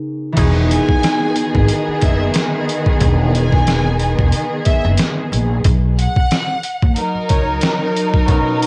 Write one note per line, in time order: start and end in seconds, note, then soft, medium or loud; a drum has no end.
0.00 0.42 C#3 medium
0.00 0.34 B3 medium
0.00 0.64 C#4 medium
0.00 0.35 D#4 medium
0.00 0.40 A#4 medium
0.32 5.60 D#3 medium
0.32 4.22 E3 medium
0.32 3.45 B3 medium
0.32 5.60 B3 medium
0.32 3.06 D#4 medium
0.32 5.60 G#4 medium
0.37 0.77 E1 loud
0.37 2.97 F#4 medium
0.37 2.98 G#4 medium
0.37 kick loud
0.37 closed hi-hat medium
0.37 crash loud
0.71 1.65 G#5 loud
0.71 closed hi-hat medium
0.89 kick loud
1.03 snare loud
1.03 closed hi-hat loud
1.36 closed hi-hat medium
1.55 1.66 G#1 medium
1.55 kick loud
1.68 closed hi-hat loud
1.88 muted upright bass stroke soft
2.01 2.28 F#1 medium
2.01 2.18 E5 medium
2.01 kick loud
2.01 closed hi-hat medium
2.34 snare loud
2.34 closed hi-hat loud
2.69 closed hi-hat medium
2.86 kick loud
3.00 4.14 E1 loud
3.00 kick loud
3.00 closed hi-hat medium
3.34 4.29 G#5 medium
3.34 closed hi-hat medium
3.52 kick loud
3.52 snare soft
3.67 snare loud
3.67 closed hi-hat loud
3.99 closed hi-hat medium
4.19 4.30 E1 loud
4.19 kick loud
4.32 closed hi-hat medium
4.65 4.82 E5 medium
4.65 kick loud
4.65 closed hi-hat medium
4.84 4.96 F#1 loud
4.97 snare loud
4.97 closed hi-hat loud
5.32 5.57 A#1 medium
5.32 closed hi-hat medium
5.64 6.04 B1 loud
5.64 kick loud
5.64 closed hi-hat medium
5.98 6.93 F#5 loud
5.98 closed hi-hat medium
6.16 kick loud
6.31 snare loud
6.31 closed hi-hat loud
6.63 closed hi-hat medium
6.82 6.94 D#2 medium
6.82 kick loud
6.96 8.67 F#3 medium
6.96 8.67 D#4 medium
6.96 8.67 A#4 medium
6.96 closed hi-hat loud
7.15 muted upright bass stroke medium
7.29 7.55 C#2 medium
7.29 7.46 C#5 medium
7.29 kick loud
7.29 closed hi-hat medium
7.61 snare loud
7.61 closed hi-hat loud
7.97 closed hi-hat medium
8.14 kick loud
8.26 8.67 B2 medium
8.26 8.67 B3 medium
8.26 8.67 C#4 medium
8.26 kick loud
8.26 closed hi-hat medium
8.30 8.67 D#4 medium
8.30 8.67 A#4 medium
8.62 8.67 D#5 medium
8.62 closed hi-hat medium